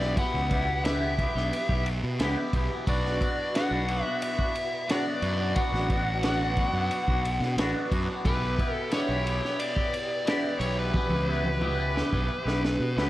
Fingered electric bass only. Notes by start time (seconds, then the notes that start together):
Already playing: B1
0.34 C#2
1.35 B1
1.69 B1
2.03 B2
2.19 C#2
2.53 B1
2.87 B1
3.71 B1
5.22 F#2
5.72 A1
6.73 F#2
7.07 B1
7.40 B2
7.57 A1
7.91 F#2
8.24 B1
9.09 B1
10.60 B1
11.09 C#2
12.13 B1
12.45 B1
12.80 B2
12.97 C#2